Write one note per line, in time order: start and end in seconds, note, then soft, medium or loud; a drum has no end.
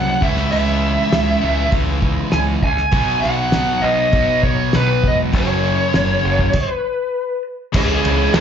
0.00 0.14 C2 medium
0.00 0.19 F#2 medium
0.00 0.21 F#2 medium
0.00 0.19 C#3 medium
0.00 0.21 C#3 medium
0.00 0.20 F#3 medium
0.00 0.22 F#3 medium
0.00 0.21 A#3 medium
0.00 0.21 C#4 medium
0.00 0.21 F#4 loud
0.00 0.23 F#5 loud
0.20 0.44 C#2 medium
0.20 2.61 C#3 medium
0.20 2.61 E3 loud
0.20 2.62 G#3 loud
0.20 2.62 C#4 loud
0.20 2.62 E4 loud
0.20 0.51 E5 medium
0.20 kick loud
0.37 snare soft
0.52 0.96 C#2 medium
0.52 1.69 E5 medium
0.52 open hi-hat medium
1.12 1.34 C#2 medium
1.12 snare loud
1.12 open hi-hat medium
1.41 1.65 C#2 loud
1.41 2.62 C#3 medium
1.41 2.61 G#3 medium
1.41 2.61 C#4 loud
1.72 2.16 C#2 medium
1.72 kick loud
1.72 open hi-hat soft
2.02 kick medium
2.32 2.55 C#2 loud
2.32 2.41 G#5 medium
2.32 snare medium
2.32 open hi-hat soft
2.63 2.85 C#2 medium
2.63 3.21 G#5 medium
2.63 kick medium
2.77 snare soft
2.92 3.15 B1 medium
2.92 5.32 B2 medium
2.92 5.32 F#3 loud
2.92 5.33 B3 medium
2.92 5.33 D#4 medium
2.92 5.33 F#4 medium
2.92 kick loud
2.92 open hi-hat soft
3.21 3.46 B1 medium
3.21 3.84 F#5 loud
3.21 snare soft
3.52 3.76 B1 medium
3.52 snare loud
3.52 open hi-hat soft
3.82 4.05 B1 loud
3.82 4.43 D#5 loud
4.12 4.57 B1 medium
4.12 5.31 B2 medium
4.12 5.32 F#3 medium
4.12 5.33 B3 medium
4.12 kick loud
4.12 open hi-hat soft
4.43 4.75 C#5 medium
4.43 kick medium
4.73 4.96 B1 medium
4.73 5.06 B4 medium
4.73 snare medium
4.73 open hi-hat soft
5.04 5.34 E1 medium
5.04 kick medium
5.08 5.15 D#5 medium
5.32 5.77 F#1 medium
5.32 6.51 F#2 medium
5.32 6.52 C#3 medium
5.32 6.52 F#3 medium
5.32 6.52 A#3 loud
5.32 6.53 C#4 medium
5.32 6.53 F#4 medium
5.32 kick loud
5.32 open hi-hat soft
5.38 6.71 C#5 medium
5.94 6.16 F#1 loud
5.94 snare loud
5.94 open hi-hat soft
6.24 6.46 F#1 medium
6.39 kick medium
6.53 kick medium
6.53 crash medium
6.71 7.42 B4 medium
7.73 7.96 C#2 medium
7.73 8.34 C#3 medium
7.73 8.34 E3 medium
7.73 8.35 G#3 medium
7.73 8.40 G#3 medium
7.73 8.40 C#4 medium
7.73 8.35 C#4 loud
7.73 8.36 E4 medium
7.73 8.40 E4 medium
7.73 8.40 C#5 medium
7.73 kick loud
7.73 crash loud
7.78 8.32 G#4 medium
8.05 8.27 C#2 loud
8.05 ride medium
8.34 8.40 C#2 medium
8.34 8.40 C#3 medium
8.34 8.40 E3 medium
8.34 8.40 G#3 loud
8.34 8.40 C#4 loud
8.34 8.40 E4 loud
8.34 snare loud
8.34 ride medium